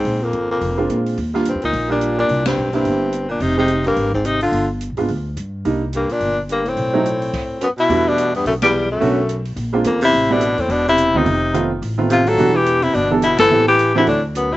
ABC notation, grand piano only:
X:1
M:4/4
L:1/8
Q:"Swing" 1/4=214
K:Cm
V:1 name="Grand piano"
z4 z [A,CDF]3 | z [G,B,DF] z3 [G,B,DF]3 | z3 [G,B,D=E]3 z2 | z [A,CEG] z6 |
z3 [A,=B,DF] z4 | [G,B,DE] z6 z | z [^F,=A,C^D] z6 | [K:Em] [G,A,B,DF]4- [G,A,B,DF] z3 |
[A,B,^CDF] z4 [^G,^A,^B,D^E] z2 | z [G,A,B,CE] z4 z [^D,A,B,C=F] | z2 [_E,A,B,C=F] z2 [E,A,B,CF]3 | [E,G,B,DF] z4 [E,G,B,DA] z2 |
[E,A,B,CG] z2 [E,A,CDF] z4 |]